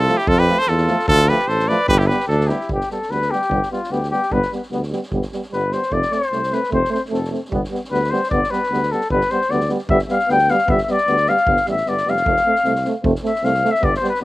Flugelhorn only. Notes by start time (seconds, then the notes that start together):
0.00 F4
0.19 E4
0.28 F4
0.39 G4
0.59 A4
0.69 F4
1.10 F4
1.30 G4
1.49 A4
1.68 B4
1.89 G4
1.99 E4
2.09 G4
2.29 D4
2.50 E4
2.72 G4
2.92 A4
3.11 B4
3.31 G4
3.72 F4
3.92 G4
4.11 G4
4.33 B4
5.53 B4
5.73 C5
5.93 D5
6.13 C5
6.54 B4
6.73 C5
6.92 C5
7.13 A4
7.91 B4
8.10 C5
8.30 D5
8.51 B4
8.92 A4
9.11 B4
9.31 C5
9.51 D5
9.90 E5
10.11 F5
10.31 G5
10.51 F5
10.70 E5
10.82 E5
10.92 D5
11.29 F5
11.69 E5
11.89 D5
12.10 F5
13.26 E5
13.45 F5
13.72 E5
13.84 D5
13.96 C5
14.09 B4